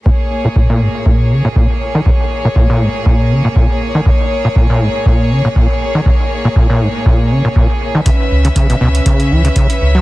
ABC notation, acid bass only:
X:1
M:4/4
L:1/16
Q:"Swing 16ths" 1/4=120
K:Bbphr
V:1 name="Acid bass" clef=bass
B,, z2 B,, B,, B,, A,, z B,,2 D, B,, B,, z2 E, | B,, z2 B,, B,, B,, A,, z B,,2 D, B,, B,, z2 E, | B,, z2 B,, B,, B,, A,, z B,,2 D, B,, B,, z2 E, | B,, z2 B,, B,, B,, A,, z B,,2 D, B,, B,, z2 E, |
D, z2 D, D, C, C, z D,2 _F, D, D, z2 G, |]